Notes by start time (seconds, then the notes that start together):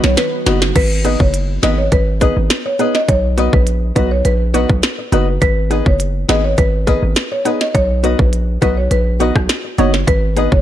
Already playing: D#3 F#3 B3 D#4 F#4
0.04 B1 C#5, snare
0.17 B4, snare, closed hi-hat
0.46 F#1 B3 D#4 F#4 B4 D#5, snare, closed hi-hat
0.62 muted nylon-string guitar stroke, snare
0.76 G#1 B4, kick, closed hi-hat, crash
1.04 B3 D#4 G#4 B4 D#5, closed hi-hat
1.20 F#1 C#5, kick
1.34 closed hi-hat
1.63 G#1 B3 D#4 G#4 B4 D#5, snare, closed hi-hat
1.78 C#5
1.92 G#1 B4, kick, closed hi-hat
2.21 B3 D#4 G#4 B4 D#5, kick, closed hi-hat
2.37 G#1
2.50 snare, closed hi-hat
2.66 C#5, muted nylon-string guitar stroke
2.79 B3 D#4 G#4 B4 D#5, closed hi-hat
2.95 D#5, snare
3.08 B1 C#5, kick, closed hi-hat
3.37 B3 D#4 F#4 B4 D#5, closed hi-hat
3.53 A#1 B4, kick
3.67 closed hi-hat
3.95 B1 B3 D#4 F#4 B4 D#5, kick, closed hi-hat
4.11 C#5
4.25 A#1 B4, closed hi-hat
4.54 B3 D#4 F#4 B4 D#5, closed hi-hat
4.70 B1, kick
4.83 snare, closed hi-hat
4.99 muted nylon-string guitar stroke
5.12 F#1 B3 D#4 F#4 B4 D#5, closed hi-hat
5.42 G#1 B4, kick, closed hi-hat
5.70 B3 D#4 G#4 B4 D#5, closed hi-hat
5.86 F#1 C#5, kick
6.00 closed hi-hat
6.28 G#1 B3 D#4 G#4 B4 D#5, snare, closed hi-hat
6.44 C#5
6.58 G#1 B4, kick, closed hi-hat
6.87 B3 D#4 G#4 A#4 B4 D#5, kick, closed hi-hat
7.03 G#1
7.16 snare, closed hi-hat
7.31 C#5, muted nylon-string guitar stroke
7.45 B3 D#4 G#4 B4 D#5, closed hi-hat
7.61 D#5, snare
7.75 B1 C#5, kick, closed hi-hat
8.03 B3 D#4 F#4 B4 D#5, closed hi-hat
8.19 A#1 B4, kick
8.33 closed hi-hat
8.61 B1 B3 D#4 F#4 B4 D#5, kick, closed hi-hat
8.77 C#5
8.91 A#1 B4, closed hi-hat
9.20 B3 D#4 F#4 B4 D#5, closed hi-hat
9.36 B1, kick, cross-stick
9.49 snare, closed hi-hat
9.64 muted nylon-string guitar stroke
9.78 F#1 B3 D#4 F#4 B4 C#5 D#5, closed hi-hat
9.94 snare
10.07 G#1 B4, kick, closed hi-hat
10.36 B3 D#4 G#4 B4 D#5, closed hi-hat
10.52 F#1 C#5, kick